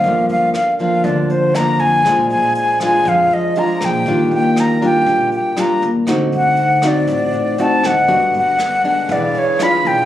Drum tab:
HH |xxxxxxxx|xxxxxxxx|xxxxxxxx|xxxxxxxx|
SD |--r---r-|r--r---r|--r---r-|r--r---r|
BD |o--oo--o|o--oo--o|o--oo--o|o--oo--o|

HH |xxxxxxxx|
SD |--r---r-|
BD |o--oo--o|